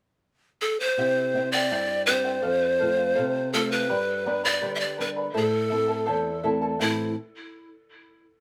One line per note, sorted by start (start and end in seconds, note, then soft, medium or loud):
0.61 0.81 A4 medium
0.80 1.51 C5 medium
0.98 1.68 C3 medium
0.98 1.34 E4 medium
0.98 1.34 G4 medium
0.98 1.34 C5 medium
0.98 1.33 E5 medium
0.98 1.34 G5 medium
1.34 1.92 C4 soft
1.34 1.92 E4 soft
1.34 1.53 E4 medium
1.34 1.93 G4 soft
1.34 1.53 C5 medium
1.34 1.52 E5 soft
1.34 1.53 G5 medium
1.52 1.71 E4 soft
1.52 1.71 C5 soft
1.52 2.03 D5 loud
1.52 1.71 G5 soft
1.72 2.42 G2 medium
1.72 2.07 E4 medium
1.72 2.07 G4 medium
1.72 2.07 C5 medium
1.72 2.06 E5 medium
1.72 2.08 G5 medium
2.06 2.37 C4 soft
2.06 2.25 E4 soft
2.06 2.37 E4 soft
2.06 2.37 G4 soft
2.06 3.55 C5 loud
2.06 2.24 C5 medium
2.06 2.25 E5 soft
2.06 2.23 G5 medium
2.25 2.44 E4 soft
2.25 2.41 C5 soft
2.25 2.43 G5 medium
2.42 3.15 F2 medium
2.42 2.78 A4 medium
2.42 2.79 C5 medium
2.42 2.79 F5 medium
2.79 3.39 A3 soft
2.79 3.39 C4 soft
2.79 3.40 F4 soft
2.79 2.97 A4 medium
2.79 2.96 C5 medium
2.79 2.96 F5 medium
2.97 3.14 C5 soft
2.97 3.14 F5 medium
3.15 3.88 C3 medium
3.15 3.52 A4 medium
3.15 3.52 C5 medium
3.15 3.52 F5 medium
3.53 3.83 A3 soft
3.53 3.83 C4 soft
3.53 3.83 F4 soft
3.53 3.71 A4 medium
3.53 3.73 A4 medium
3.53 3.70 C5 medium
3.53 3.69 F5 medium
3.70 4.44 B4 medium
3.70 3.88 C5 soft
3.70 3.89 F5 soft
3.89 4.61 G2 medium
3.89 4.25 G4 medium
3.89 4.25 B4 medium
3.89 4.25 D5 medium
3.89 4.24 G5 medium
3.89 4.26 B5 medium
4.26 4.84 G3 soft
4.26 4.85 B3 soft
4.26 4.85 D4 soft
4.26 4.44 B4 medium
4.26 4.43 D5 medium
4.26 4.44 G5 medium
4.26 4.42 B5 medium
4.44 4.61 B4 soft
4.44 4.61 D5 soft
4.44 4.74 D5 medium
4.44 4.61 B5 soft
4.62 5.33 D3 medium
4.62 4.98 G4 medium
4.62 4.97 B4 medium
4.62 4.97 D5 medium
4.62 4.96 G5 medium
4.62 4.97 B5 medium
4.75 4.82 E5 medium
4.80 4.98 D5 medium
4.98 5.28 G3 soft
4.98 5.28 B3 soft
4.98 5.29 D4 soft
4.98 5.17 B4 medium
4.98 5.09 B4 medium
4.98 5.16 D5 medium
4.98 5.16 G5 medium
4.98 5.15 B5 medium
5.17 5.34 B4 soft
5.17 5.34 D5 soft
5.17 5.34 B5 soft
5.34 6.06 A2 medium
5.34 5.69 E4 medium
5.34 5.69 A4 medium
5.34 6.41 A4 medium
5.34 5.71 C5 medium
5.34 5.69 E5 medium
5.34 5.70 A5 medium
5.70 6.30 A3 soft
5.70 6.30 C4 soft
5.70 5.88 E4 soft
5.70 6.30 E4 soft
5.70 5.88 A4 medium
5.70 5.89 E5 soft
5.70 5.86 A5 medium
5.88 6.05 E4 soft
5.88 6.05 A4 soft
5.88 6.06 A5 soft
6.06 6.79 E2 medium
6.06 6.42 E4 medium
6.06 6.43 A4 medium
6.06 6.43 C5 medium
6.06 6.42 E5 medium
6.06 6.44 A5 medium
6.43 6.73 A3 soft
6.43 6.73 C4 soft
6.43 6.61 E4 medium
6.43 6.74 E4 soft
6.43 6.61 A4 medium
6.43 6.62 E5 medium
6.43 6.60 A5 medium
6.61 6.79 E4 soft
6.61 6.80 A4 medium
6.61 6.80 A5 medium
6.79 7.14 A2 soft
6.79 7.14 E3 soft
6.79 7.14 A3 soft
6.79 7.15 C4 soft
6.79 7.09 E4 medium
6.79 7.15 E4 medium
6.79 7.10 A4 medium
6.79 7.09 C5 medium
6.79 7.09 E5 medium
6.79 7.10 A5 medium